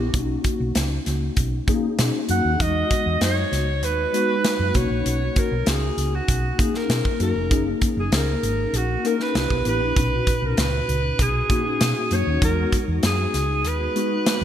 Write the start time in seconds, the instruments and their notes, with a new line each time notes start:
Already playing: tine electric piano B3 D4 E4 G4
0.13 fingered electric bass B1, tine electric piano A#3 C#4 D#4 F#4, kick, closed hi-hat
0.44 kick, closed hi-hat
0.60 fingered electric bass B1
0.75 fingered electric bass C#2, snare, closed hi-hat
1.06 fingered electric bass C#2, snare, closed hi-hat
1.37 fingered electric bass B1, kick, closed hi-hat
1.67 tine electric piano A#3 C#4 D#4 G#4, kick, closed hi-hat
1.99 fingered electric bass B2, snare, closed hi-hat
2.28 fingered electric bass F#2, tine electric piano A#3 C#4 D#4 F#4, alto saxophone F#5, closed hi-hat
2.45 fingered electric bass D#2
2.59 fingered electric bass E2, tine electric piano F#3 B3 D#4 F#4, alto saxophone D#5, kick, closed hi-hat
2.66 tine electric piano G#3
2.91 kick, closed hi-hat
3.06 fingered electric bass E2
3.21 fingered electric bass F#2, alto saxophone C#5, snare, closed hi-hat
3.52 fingered electric bass C#2, snare, closed hi-hat
3.83 fingered electric bass D#2, alto saxophone B4, closed hi-hat
4.13 tine electric piano G#3 B3 D#4 F#4, closed hi-hat
4.44 snare, closed hi-hat
4.59 fingered electric bass F#2
4.74 fingered electric bass B1, tine electric piano A#3 C#4 D4 F#4, alto saxophone C#5, kick, closed hi-hat
4.82 tine electric piano D#4
4.90 fingered electric bass A#1
5.06 fingered electric bass B1, closed hi-hat
5.36 alto saxophone A#4, kick, closed hi-hat
5.51 fingered electric bass B1
5.66 fingered electric bass C#2, alto saxophone G#4, snare, closed hi-hat
5.97 fingered electric bass C#2, closed hi-hat
6.15 alto saxophone F#4
6.28 fingered electric bass B1, kick, closed hi-hat
6.58 tine electric piano A#3 C#4 D#4 G#4, alto saxophone G#4, kick, closed hi-hat
6.74 alto saxophone A#4, snare
6.89 fingered electric bass B2, snare, closed hi-hat
7.05 kick
7.20 fingered electric bass F#2, tine electric piano A#3 C#4 D#4 F#4, alto saxophone A#4, closed hi-hat
7.36 fingered electric bass F1
7.51 fingered electric bass F#1, tine electric piano A#3 C#4 D#4 G#4, kick, closed hi-hat
7.81 kick, closed hi-hat
7.97 fingered electric bass F#1, alto saxophone G#4
8.12 fingered electric bass C#2, alto saxophone A#4, snare, closed hi-hat
8.43 fingered electric bass G#1, closed hi-hat
8.73 fingered electric bass A#1, alto saxophone F#4, closed hi-hat
9.04 tine electric piano A#3 C#4 D#4 A#4, alto saxophone A#4, closed hi-hat
9.20 alto saxophone B4, snare
9.35 fingered electric bass C2, tine electric piano B3 D4 E4 G4, snare, closed hi-hat
9.50 fingered electric bass B1, kick
9.65 fingered electric bass A1, tine electric piano B3 D4 E4 G4, alto saxophone B4, closed hi-hat
9.80 fingered electric bass A#1
9.96 fingered electric bass B1, tine electric piano A#2 C#4 D#4 F#4, kick, closed hi-hat
10.27 kick, closed hi-hat
10.42 fingered electric bass B1, alto saxophone A#4
10.57 fingered electric bass C#2, alto saxophone B4, snare, closed hi-hat
10.88 fingered electric bass C#2, closed hi-hat
11.19 fingered electric bass B1, alto saxophone G#4, kick, closed hi-hat
11.49 tine electric piano A#3 C#4 D#4 F#4, kick, closed hi-hat
11.81 fingered electric bass B2, snare, closed hi-hat
12.11 fingered electric bass F#2, tine electric piano A#3 C#4 D#4 F#4, alto saxophone C#5, closed hi-hat
12.27 fingered electric bass D#2
12.41 fingered electric bass E2, tine electric piano G3 B3 D#4 F#4, alto saxophone A#4, kick, closed hi-hat
12.48 tine electric piano G#3
12.72 kick, closed hi-hat
12.88 fingered electric bass E2
13.03 fingered electric bass F#2, alto saxophone G#4, snare, closed hi-hat
13.34 fingered electric bass C#2, snare, closed hi-hat
13.65 fingered electric bass D#2, alto saxophone B4, closed hi-hat
13.95 tine electric piano G#3 B3 D#4 F#4, closed hi-hat
14.26 snare, closed hi-hat